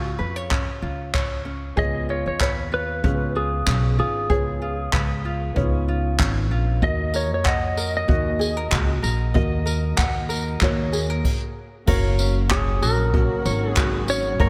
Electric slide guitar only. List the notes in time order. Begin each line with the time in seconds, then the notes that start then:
Already playing: F#4
1.79 D#5
2.10 C#5
2.28 C#5
2.42 C#5
2.74 B4
3.37 G#4
4.00 G#4
6.84 D#5
7.16 C#5
7.34 C#5
7.48 D#5
7.97 D#5
12.51 G#4
12.82 A#4
13.71 G#4
14.10 C#5